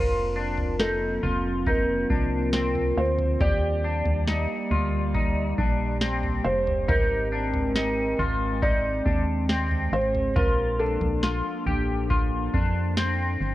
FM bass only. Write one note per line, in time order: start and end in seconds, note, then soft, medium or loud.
0.00 1.19 F1 loud
1.23 2.06 F1 medium
2.10 2.93 C2 medium
2.97 3.39 D2 medium
3.41 4.03 D#2 medium
4.06 4.47 D#2 medium
4.71 5.54 D2 medium
5.58 6.41 A#1 medium
6.45 6.90 F1 medium
6.89 8.15 G#1 loud
8.19 9.02 G#1 medium
9.06 9.89 D#2 medium
9.92 10.34 G#1 medium
10.36 10.98 A#1 medium
11.01 11.43 A#1 loud
11.66 12.50 A1 loud
12.54 13.37 F2 medium
13.41 13.55 G1 medium